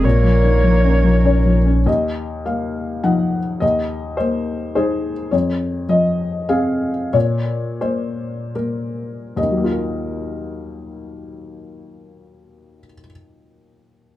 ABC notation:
X:1
M:3/4
L:1/8
Q:1/4=98
K:Ebdor
V:1 name="Viola"
d4- d z | z6 | z6 | z6 |
z6 | z6 | z6 |]
V:2 name="Violin"
B4- B z | z6 | z6 | z6 |
z6 | z6 | z6 |]
V:3 name="Felt piano"
z4 d2 | e2 f2 g2 | e2 c2 c2 | d2 e2 f2 |
d2 c2 z2 | [E,,E,G,B,FBe]6- | [E,,E,G,B,FBe]6 |]
V:4 name="Felt piano"
(3B,, F, E, (3F, D F, (3D F, D | E,,2 B,2 [F,E]2 | E,,2 B,2 [EA]2 | F,,2 F,2 [CA]2 |
B,,2 B,2 [B,B]2 | z6 | z6 |]
V:5 name="Cello"
B,4- B, z | z6 | z6 | z6 |
z6 | z6 | z6 |]
V:6 name="Sub bass" clef=bass
B,,,6 | z6 | z6 | z6 |
z6 | z6 | z6 |]